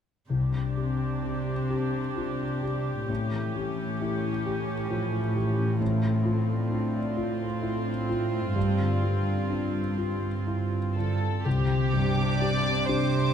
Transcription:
0.28 C2 C3 D4 G4
0.53 G3
0.76 C4 G4
1.00 D4
1.23 D4 G4
1.46 C5
1.69 G4
1.93 C5
2.16 F4 G4
2.39 D4
2.62 G3 G4
2.85 C4
3.08 A2 C#4
3.31 E3
3.55 C#4 G4
3.77 E4
4.00 E4 G4
4.23 C#5
4.45 G4
4.67 C#5
4.90 F3 G4
5.12 E4
5.35 E3 G4
5.58 C#4
5.80 A2 C4 F4
6.03 A3
6.24 C4 F4
6.48 D4
6.70 D4 F4
6.93 D5
7.16 F4
7.40 A4
7.62 E4 F4
7.86 D4
8.09 A3 F4
8.33 C4
8.56 G2
8.80 D3
9.03 C4 F4
9.28 D4
9.50 D4 F4
9.98 F4
10.47 E4 F4
10.72 D4
10.96 D3 F4 A4
11.22 C4
11.45 C2 C3 G4
11.93 G2 G3 D4 G4 D6
12.40 C4 D4 G4 D5
12.88 C3 D4 G4 C5

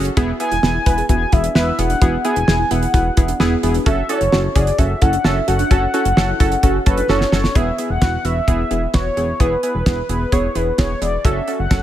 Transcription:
Already playing: F#1
0.05 closed hi-hat
0.17 E1 B3 E4 F#4 G#4, kick, closed hi-hat
0.40 B3 E4 G#4 G#5, closed hi-hat
0.51 E1 E4, closed hi-hat
0.63 E1 B3 E4 G#4, snare
0.75 E4
0.86 E1 B3 E4 B4, kick, closed hi-hat
0.98 G#4, closed hi-hat
1.09 E1 B3 E4 F#4 G#4 G#5, kick, closed hi-hat
1.32 E1 B3 E4 G#4 E5, kick, closed hi-hat
1.44 D4, closed hi-hat
1.55 E1 B3 E4 B4 E5, snare
1.78 E1 B3 E4 F#4 G#4 F#5, closed hi-hat
1.90 D4, closed hi-hat
2.02 E1 B3 E4 F#4 G#4, kick, closed hi-hat
2.25 B3 E4 G#4 G#5, closed hi-hat
2.36 E1 E4, closed hi-hat
2.48 E1 B3 E4 G#4, snare
2.59 E4
2.71 E1 B3 E4 G#4 F#5, closed hi-hat
2.82 G#4, closed hi-hat
2.94 E1 B3 E4 F#4 G#4, kick, closed hi-hat
3.17 E1 B3 E4 G#4, kick, closed hi-hat
3.28 D4, closed hi-hat
3.40 E1 B3 E4 G#4, snare
3.63 E1 B3 E4 F#4 G#4, closed hi-hat
3.74 D4, closed hi-hat
3.86 F#1 C#4 F#4 A4 E5, kick, closed hi-hat
4.09 C#4 E4 F#4 A4 C#5, closed hi-hat
4.21 F#1 E4, closed hi-hat
4.32 F#1 C#4 F#4 A4, snare
4.44 E4
4.55 F#1 C#4 E4 F#4 G#4 D5, kick, closed hi-hat
4.67 G#4, closed hi-hat
4.78 F#1 C#4 F#4 A4 E5, kick, closed hi-hat
5.01 F#1 C#4 E4 F#4 A4 F#5, kick, closed hi-hat
5.13 D4, closed hi-hat
5.24 F#1 C#4 E4 F#4 A4 E5, snare
5.48 F#1 C#4 F#4 A4 F#5, closed hi-hat
5.59 D4, closed hi-hat
5.71 F#1 C#4 F#4 A4, kick, closed hi-hat
5.94 C#4 E4 F#4 A4, closed hi-hat
6.05 F#1 E4, closed hi-hat
6.17 F#1 C#4 F#4 A4, snare
6.29 E4
6.40 F#1 C#4 E4 F#4 A4, kick, closed hi-hat
6.52 G#4, closed hi-hat
6.63 F#1 C#4 F#4 A4, kick, closed hi-hat
6.86 F#1 C#4 E4 F#4 A4 B4, kick, closed hi-hat
6.98 D4, closed hi-hat
7.09 F#1 C#4 E4 F#4 A4 C#5, snare
7.21 snare
7.32 F#1 C#4 F#4 A4, snare
7.44 D4, snare
7.55 E1 B3 E4 G#4 E5, kick, closed hi-hat
7.78 B3 E4 G#4, closed hi-hat
7.90 E1 F#5
8.02 E1 B3 E4 F#4, kick, snare, closed hi-hat
8.25 E1 B3 E4 F#4 E5, closed hi-hat
8.48 E1 B3 E4 G#4, kick, closed hi-hat
8.71 E1 B3 E4 G#4, closed hi-hat
8.94 E1 B3 E4 F#4 C#5, kick, snare, closed hi-hat
9.17 E1 B3 E4 G#4, closed hi-hat
9.40 E1 B3 E4 G#4 B4, kick, closed hi-hat
9.63 B3 E4 G#4 B4, closed hi-hat
9.75 E1
9.86 E1 B3 E4 G#4 B4, kick, snare, closed hi-hat
10.09 E1 B3 E4 G#4 B4, closed hi-hat
10.32 E1 B3 E4 G#4 C#5, kick, closed hi-hat
10.55 E1 B3 E4 G#4 B4, closed hi-hat
10.78 E1 B3 E4 G#4 C#5, kick, snare, closed hi-hat
11.02 E1 B3 E4 G#4 D5, closed hi-hat
11.25 F#1 C#4 F#4 A4 E5, kick, closed hi-hat
11.48 C#4 F#4 A4, closed hi-hat
11.59 F#1 F#5
11.71 F#1 C#4 F#4 A4, kick, snare, closed hi-hat

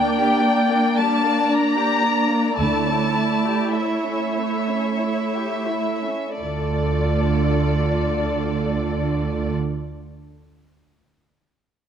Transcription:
Already playing: D2 D3 A#3 D4 D5 G5
0.19 G4
0.44 D4
0.71 A#3
0.96 G3 A5
1.23 A#3
1.50 D4 A#5
1.77 G4
2.03 D4
2.30 A#3
2.58 D2 D3 A3 E4 A5
2.86 C#4
3.15 E4
3.45 G4
3.73 E4 C#5 E5
4.05 C#4
4.37 A3
4.67 C#4
5.00 E4
5.35 G4
5.70 E4
6.05 C#4
6.40 D2 D3 A3 F4 A4 D5

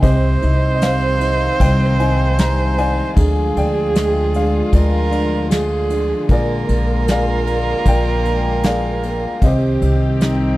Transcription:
0.02 C2 C3 D#3 G3 C4 D#4 G4 C5 D#5, kick, ride
0.42 C2 D#4, ride
0.74 D#5
0.81 G3 C5 F5, snare, ride
1.20 D#4, ride
1.60 C2 G3 C5 D#5 G5, kick, ride
2.00 D#4 G#5, ride
2.38 G3 A#5, snare, ride
2.78 D#4 D5 F5 G#5, ride
3.14 D2 D3 F3 G#3 F4 G#4, kick, ride
3.56 D2 D4 D5 G5, ride
3.95 G#3, snare, ride
4.34 D4 F5, ride
4.73 D2 G#3 F4 G#4 A#4 D5, kick, ride
5.11 D4, ride
5.50 G#3 G#4, snare, ride
5.90 D4, ride
6.29 A#1 G#3 A#3 F4 G#4 A#4 D5, kick, ride
6.67 A#1 A#3, ride
7.07 A#3 G#4 D5, snare, ride
7.12 F5
7.46 A#3, ride
7.86 A#1 A#3 D5 G5, kick, ride
8.24 A#3, ride
8.63 A#3 G#4 D5 F5, snare, ride
9.03 A#3, ride
9.42 C2 D#3 G3 C4 G4 D#5, kick, ride
9.46 C5
9.82 C2 C4, ride
10.21 C4 D#4, snare, ride

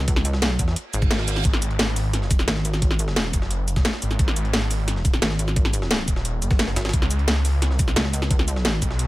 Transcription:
Already playing: C#2
0.08 kick, closed hi-hat
0.16 snare
0.25 closed hi-hat, cabasa
0.33 C2, snare
0.42 snare, closed hi-hat
0.59 E2, kick, closed hi-hat, cabasa
0.68 snare
0.76 closed hi-hat, reverse cymbal
0.93 G#1, closed hi-hat, cabasa
1.02 kick, cabasa
1.11 snare, closed hi-hat
1.19 snare
1.28 closed hi-hat, cabasa
1.36 snare, cabasa
1.45 G#1, kick, closed hi-hat
1.53 snare
1.62 G#1, closed hi-hat, cabasa
1.71 closed hi-hat
1.79 snare, closed hi-hat
1.88 closed hi-hat
1.96 closed hi-hat, open hi-hat, cabasa
2.13 snare, closed hi-hat
2.22 snare
2.31 kick, closed hi-hat, cabasa
2.39 snare, cabasa
2.48 G#1, snare, closed hi-hat
2.56 snare
2.65 closed hi-hat, cabasa
2.73 snare, cabasa
2.82 kick, closed hi-hat
2.91 snare
2.99 closed hi-hat, cabasa
3.08 snare
3.16 snare, closed hi-hat
3.33 F#1, kick, closed hi-hat, cabasa
3.42 snare
3.51 closed hi-hat
3.68 closed hi-hat, cabasa
3.76 kick, snare, cabasa
3.85 snare, closed hi-hat
3.93 snare
4.02 G#1, closed hi-hat, cabasa
4.11 snare, cabasa
4.19 G#1, kick, closed hi-hat
4.28 snare
4.36 G#1, closed hi-hat, cabasa
4.45 closed hi-hat
4.53 snare, closed hi-hat
4.62 closed hi-hat
4.71 closed hi-hat, open hi-hat, cabasa
4.88 snare, closed hi-hat
4.96 snare
5.05 kick, closed hi-hat, cabasa
5.13 snare, cabasa
5.22 G#1, snare, closed hi-hat
5.31 snare
5.39 closed hi-hat, cabasa
5.48 snare, cabasa
5.56 kick, closed hi-hat
5.65 snare, closed hi-hat
5.73 closed hi-hat, cabasa
5.82 snare
5.91 snare, closed hi-hat
6.08 D#1, kick, closed hi-hat, cabasa
6.16 snare
6.25 closed hi-hat
6.42 F#1, closed hi-hat, cabasa
6.51 kick, snare, cabasa
6.59 snare, closed hi-hat
6.68 snare
6.76 G#1, snare, closed hi-hat, cabasa
6.85 snare, closed hi-hat, cabasa
6.89 snare, closed hi-hat
6.93 C#2, kick, closed hi-hat
7.02 snare
7.11 C#2, closed hi-hat, cabasa
7.19 closed hi-hat
7.28 snare, closed hi-hat
7.36 closed hi-hat
7.45 closed hi-hat, open hi-hat, cabasa
7.62 snare, closed hi-hat
7.71 C2, snare
7.79 kick, closed hi-hat, cabasa
7.88 snare, cabasa
7.96 C#2, snare, closed hi-hat
8.05 snare
8.13 closed hi-hat, cabasa
8.22 snare, cabasa
8.31 kick, closed hi-hat
8.39 snare
8.48 closed hi-hat, cabasa
8.56 snare
8.65 snare, closed hi-hat
8.82 B1, kick, closed hi-hat, cabasa
8.91 snare
8.99 closed hi-hat

